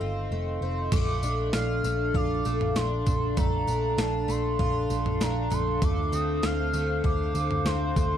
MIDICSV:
0, 0, Header, 1, 6, 480
1, 0, Start_track
1, 0, Key_signature, -2, "major"
1, 0, Tempo, 612245
1, 724, Time_signature, 4, 2, 24, 8
1, 6410, End_track
2, 0, Start_track
2, 0, Title_t, "Soft synth lead"
2, 0, Program_c, 0, 80
2, 487, Note_on_c, 0, 84, 81
2, 726, Note_on_c, 0, 86, 98
2, 738, Note_off_c, 0, 84, 0
2, 1193, Note_off_c, 0, 86, 0
2, 1198, Note_on_c, 0, 89, 94
2, 1690, Note_on_c, 0, 86, 112
2, 1702, Note_off_c, 0, 89, 0
2, 2164, Note_on_c, 0, 84, 91
2, 2175, Note_off_c, 0, 86, 0
2, 2648, Note_on_c, 0, 82, 98
2, 2660, Note_off_c, 0, 84, 0
2, 3126, Note_on_c, 0, 81, 93
2, 3138, Note_off_c, 0, 82, 0
2, 3370, Note_on_c, 0, 84, 98
2, 3382, Note_off_c, 0, 81, 0
2, 4092, Note_on_c, 0, 82, 90
2, 4104, Note_off_c, 0, 84, 0
2, 4339, Note_on_c, 0, 84, 93
2, 4351, Note_off_c, 0, 82, 0
2, 4574, Note_on_c, 0, 86, 102
2, 4586, Note_off_c, 0, 84, 0
2, 4817, Note_on_c, 0, 87, 96
2, 4828, Note_off_c, 0, 86, 0
2, 5054, Note_on_c, 0, 89, 110
2, 5066, Note_off_c, 0, 87, 0
2, 5529, Note_off_c, 0, 89, 0
2, 5533, Note_on_c, 0, 86, 115
2, 6007, Note_on_c, 0, 84, 96
2, 6019, Note_off_c, 0, 86, 0
2, 6410, Note_off_c, 0, 84, 0
2, 6410, End_track
3, 0, Start_track
3, 0, Title_t, "Ambient pad"
3, 0, Program_c, 1, 92
3, 0, Note_on_c, 1, 69, 75
3, 0, Note_on_c, 1, 75, 65
3, 0, Note_on_c, 1, 77, 69
3, 0, Note_on_c, 1, 84, 80
3, 703, Note_off_c, 1, 69, 0
3, 703, Note_off_c, 1, 75, 0
3, 703, Note_off_c, 1, 84, 0
3, 704, Note_off_c, 1, 77, 0
3, 720, Note_on_c, 1, 77, 71
3, 721, Note_on_c, 1, 74, 69
3, 722, Note_on_c, 1, 62, 85
3, 4531, Note_off_c, 1, 74, 0
3, 4562, Note_on_c, 1, 72, 78
3, 6410, Note_off_c, 1, 62, 0
3, 6410, Note_off_c, 1, 72, 0
3, 6410, Note_off_c, 1, 77, 0
3, 6410, End_track
4, 0, Start_track
4, 0, Title_t, "Twelve-string acoustic guitar"
4, 0, Program_c, 2, 25
4, 0, Note_on_c, 2, 51, 71
4, 0, Note_on_c, 2, 57, 52
4, 0, Note_on_c, 2, 65, 56
4, 5, Note_on_c, 2, 60, 49
4, 244, Note_off_c, 2, 57, 0
4, 247, Note_on_c, 2, 57, 47
4, 477, Note_off_c, 2, 60, 0
4, 487, Note_on_c, 2, 60, 46
4, 722, Note_off_c, 2, 57, 0
4, 724, Note_off_c, 2, 51, 0
4, 725, Note_on_c, 2, 57, 93
4, 773, Note_off_c, 2, 60, 0
4, 965, Note_on_c, 2, 62, 65
4, 1200, Note_off_c, 2, 65, 0
4, 1203, Note_on_c, 2, 65, 62
4, 1444, Note_off_c, 2, 57, 0
4, 1447, Note_on_c, 2, 57, 63
4, 1681, Note_off_c, 2, 65, 0
4, 1684, Note_on_c, 2, 65, 68
4, 1921, Note_off_c, 2, 57, 0
4, 1924, Note_on_c, 2, 57, 59
4, 2156, Note_off_c, 2, 62, 0
4, 2160, Note_on_c, 2, 62, 60
4, 2398, Note_off_c, 2, 57, 0
4, 2401, Note_on_c, 2, 57, 60
4, 2638, Note_off_c, 2, 57, 0
4, 2641, Note_on_c, 2, 57, 85
4, 2877, Note_off_c, 2, 62, 0
4, 2880, Note_on_c, 2, 62, 65
4, 3116, Note_off_c, 2, 65, 0
4, 3119, Note_on_c, 2, 65, 62
4, 3352, Note_off_c, 2, 57, 0
4, 3355, Note_on_c, 2, 57, 63
4, 3596, Note_off_c, 2, 65, 0
4, 3600, Note_on_c, 2, 65, 69
4, 3838, Note_off_c, 2, 57, 0
4, 3841, Note_on_c, 2, 57, 52
4, 4077, Note_off_c, 2, 62, 0
4, 4081, Note_on_c, 2, 62, 61
4, 4311, Note_off_c, 2, 57, 0
4, 4314, Note_on_c, 2, 57, 65
4, 4560, Note_off_c, 2, 57, 0
4, 4563, Note_on_c, 2, 57, 96
4, 4797, Note_off_c, 2, 62, 0
4, 4800, Note_on_c, 2, 60, 61
4, 5035, Note_off_c, 2, 65, 0
4, 5038, Note_on_c, 2, 65, 60
4, 5276, Note_off_c, 2, 57, 0
4, 5279, Note_on_c, 2, 57, 67
4, 5516, Note_off_c, 2, 65, 0
4, 5519, Note_on_c, 2, 65, 70
4, 5756, Note_off_c, 2, 57, 0
4, 5759, Note_on_c, 2, 57, 57
4, 5994, Note_off_c, 2, 60, 0
4, 6004, Note_on_c, 2, 60, 62
4, 6239, Note_off_c, 2, 57, 0
4, 6242, Note_on_c, 2, 57, 57
4, 6410, Note_off_c, 2, 57, 0
4, 6410, Note_off_c, 2, 60, 0
4, 6410, Note_off_c, 2, 65, 0
4, 6410, End_track
5, 0, Start_track
5, 0, Title_t, "Picked electric bass"
5, 0, Program_c, 3, 34
5, 5, Note_on_c, 3, 31, 71
5, 216, Note_off_c, 3, 31, 0
5, 243, Note_on_c, 3, 29, 76
5, 455, Note_off_c, 3, 29, 0
5, 480, Note_on_c, 3, 29, 82
5, 693, Note_off_c, 3, 29, 0
5, 723, Note_on_c, 3, 34, 94
5, 935, Note_off_c, 3, 34, 0
5, 962, Note_on_c, 3, 34, 99
5, 1174, Note_off_c, 3, 34, 0
5, 1206, Note_on_c, 3, 34, 94
5, 1416, Note_off_c, 3, 34, 0
5, 1442, Note_on_c, 3, 34, 93
5, 1654, Note_off_c, 3, 34, 0
5, 1681, Note_on_c, 3, 34, 109
5, 1893, Note_off_c, 3, 34, 0
5, 1926, Note_on_c, 3, 34, 106
5, 2137, Note_off_c, 3, 34, 0
5, 2163, Note_on_c, 3, 34, 95
5, 2375, Note_off_c, 3, 34, 0
5, 2404, Note_on_c, 3, 34, 90
5, 2616, Note_off_c, 3, 34, 0
5, 2644, Note_on_c, 3, 34, 98
5, 2855, Note_off_c, 3, 34, 0
5, 2880, Note_on_c, 3, 34, 93
5, 3093, Note_off_c, 3, 34, 0
5, 3119, Note_on_c, 3, 34, 97
5, 3333, Note_off_c, 3, 34, 0
5, 3358, Note_on_c, 3, 34, 108
5, 3572, Note_off_c, 3, 34, 0
5, 3600, Note_on_c, 3, 34, 99
5, 3813, Note_off_c, 3, 34, 0
5, 3841, Note_on_c, 3, 34, 101
5, 4053, Note_off_c, 3, 34, 0
5, 4083, Note_on_c, 3, 34, 92
5, 4295, Note_off_c, 3, 34, 0
5, 4324, Note_on_c, 3, 34, 99
5, 4535, Note_off_c, 3, 34, 0
5, 4563, Note_on_c, 3, 38, 101
5, 4775, Note_off_c, 3, 38, 0
5, 4797, Note_on_c, 3, 38, 95
5, 5012, Note_off_c, 3, 38, 0
5, 5043, Note_on_c, 3, 38, 99
5, 5255, Note_off_c, 3, 38, 0
5, 5278, Note_on_c, 3, 38, 96
5, 5492, Note_off_c, 3, 38, 0
5, 5520, Note_on_c, 3, 38, 106
5, 5733, Note_off_c, 3, 38, 0
5, 5759, Note_on_c, 3, 38, 97
5, 5973, Note_off_c, 3, 38, 0
5, 5995, Note_on_c, 3, 38, 86
5, 6211, Note_off_c, 3, 38, 0
5, 6243, Note_on_c, 3, 38, 92
5, 6410, Note_off_c, 3, 38, 0
5, 6410, End_track
6, 0, Start_track
6, 0, Title_t, "Drums"
6, 721, Note_on_c, 9, 43, 114
6, 721, Note_on_c, 9, 49, 102
6, 721, Note_on_c, 9, 54, 72
6, 723, Note_on_c, 9, 36, 122
6, 799, Note_off_c, 9, 43, 0
6, 799, Note_off_c, 9, 49, 0
6, 799, Note_off_c, 9, 54, 0
6, 801, Note_off_c, 9, 36, 0
6, 962, Note_on_c, 9, 54, 68
6, 1041, Note_off_c, 9, 54, 0
6, 1200, Note_on_c, 9, 38, 114
6, 1200, Note_on_c, 9, 54, 94
6, 1279, Note_off_c, 9, 38, 0
6, 1279, Note_off_c, 9, 54, 0
6, 1445, Note_on_c, 9, 54, 69
6, 1524, Note_off_c, 9, 54, 0
6, 1682, Note_on_c, 9, 36, 82
6, 1684, Note_on_c, 9, 43, 61
6, 1760, Note_off_c, 9, 36, 0
6, 1763, Note_off_c, 9, 43, 0
6, 1921, Note_on_c, 9, 54, 63
6, 2000, Note_off_c, 9, 54, 0
6, 2046, Note_on_c, 9, 43, 69
6, 2124, Note_off_c, 9, 43, 0
6, 2164, Note_on_c, 9, 38, 114
6, 2165, Note_on_c, 9, 54, 97
6, 2242, Note_off_c, 9, 38, 0
6, 2243, Note_off_c, 9, 54, 0
6, 2403, Note_on_c, 9, 43, 67
6, 2403, Note_on_c, 9, 54, 70
6, 2406, Note_on_c, 9, 36, 92
6, 2481, Note_off_c, 9, 43, 0
6, 2481, Note_off_c, 9, 54, 0
6, 2484, Note_off_c, 9, 36, 0
6, 2644, Note_on_c, 9, 36, 121
6, 2644, Note_on_c, 9, 43, 105
6, 2644, Note_on_c, 9, 54, 68
6, 2722, Note_off_c, 9, 36, 0
6, 2723, Note_off_c, 9, 43, 0
6, 2723, Note_off_c, 9, 54, 0
6, 2886, Note_on_c, 9, 54, 65
6, 2965, Note_off_c, 9, 54, 0
6, 3124, Note_on_c, 9, 38, 118
6, 3124, Note_on_c, 9, 54, 94
6, 3202, Note_off_c, 9, 38, 0
6, 3203, Note_off_c, 9, 54, 0
6, 3367, Note_on_c, 9, 54, 68
6, 3446, Note_off_c, 9, 54, 0
6, 3601, Note_on_c, 9, 36, 77
6, 3604, Note_on_c, 9, 43, 60
6, 3680, Note_off_c, 9, 36, 0
6, 3682, Note_off_c, 9, 43, 0
6, 3844, Note_on_c, 9, 54, 58
6, 3922, Note_off_c, 9, 54, 0
6, 3966, Note_on_c, 9, 43, 69
6, 4045, Note_off_c, 9, 43, 0
6, 4085, Note_on_c, 9, 38, 106
6, 4086, Note_on_c, 9, 54, 93
6, 4164, Note_off_c, 9, 38, 0
6, 4165, Note_off_c, 9, 54, 0
6, 4324, Note_on_c, 9, 43, 67
6, 4324, Note_on_c, 9, 54, 70
6, 4403, Note_off_c, 9, 43, 0
6, 4403, Note_off_c, 9, 54, 0
6, 4562, Note_on_c, 9, 43, 115
6, 4562, Note_on_c, 9, 54, 66
6, 4563, Note_on_c, 9, 36, 126
6, 4640, Note_off_c, 9, 43, 0
6, 4640, Note_off_c, 9, 54, 0
6, 4641, Note_off_c, 9, 36, 0
6, 4806, Note_on_c, 9, 54, 73
6, 4884, Note_off_c, 9, 54, 0
6, 5043, Note_on_c, 9, 38, 122
6, 5043, Note_on_c, 9, 54, 91
6, 5121, Note_off_c, 9, 38, 0
6, 5122, Note_off_c, 9, 54, 0
6, 5283, Note_on_c, 9, 54, 64
6, 5361, Note_off_c, 9, 54, 0
6, 5520, Note_on_c, 9, 36, 79
6, 5522, Note_on_c, 9, 43, 58
6, 5598, Note_off_c, 9, 36, 0
6, 5601, Note_off_c, 9, 43, 0
6, 5762, Note_on_c, 9, 54, 59
6, 5840, Note_off_c, 9, 54, 0
6, 5885, Note_on_c, 9, 43, 71
6, 5963, Note_off_c, 9, 43, 0
6, 6003, Note_on_c, 9, 38, 116
6, 6004, Note_on_c, 9, 54, 97
6, 6081, Note_off_c, 9, 38, 0
6, 6082, Note_off_c, 9, 54, 0
6, 6244, Note_on_c, 9, 36, 90
6, 6244, Note_on_c, 9, 43, 72
6, 6244, Note_on_c, 9, 54, 73
6, 6322, Note_off_c, 9, 43, 0
6, 6322, Note_off_c, 9, 54, 0
6, 6323, Note_off_c, 9, 36, 0
6, 6410, End_track
0, 0, End_of_file